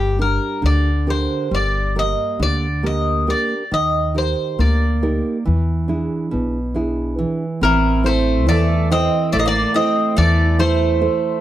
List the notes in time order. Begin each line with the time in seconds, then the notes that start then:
Already playing: G1 G3 G4
0.19 D4 G4 A#4
0.62 D2 D3 D5
1.07 D4 G4 A#4 C5
1.51 G1 G3 D5
1.96 A#3 G4 A#4 D#5
2.40 D2 D3 D5
2.83 A#3 G4 A#4 D#5
3.27 D4 G4 A#4 D5
3.71 D#2 D#3 D#5
4.14 D#4 G4 A#4 C5
4.59 D2 A#3 D5
5.02 D#4 G4 A#4
5.45 E2 E3
5.88 D4 E4 G#4
6.31 B1 B2
6.74 D4 E4 G#4
7.19 E3
7.61 A1 E3 C4 A#4
8.04 A3 E4 A4 C5
8.47 E2 E3 A3 D5
8.90 C4 E4 A4 C5 D#5
9.32 A1 A3 D5
9.39 A#3 D#5
9.46 A#3 D5
9.74 C4 E4 A4 C5 D#5
10.17 E2 E3 A3 D5
10.59 A3 E4 A4 C5
11.01 E4 A4 C5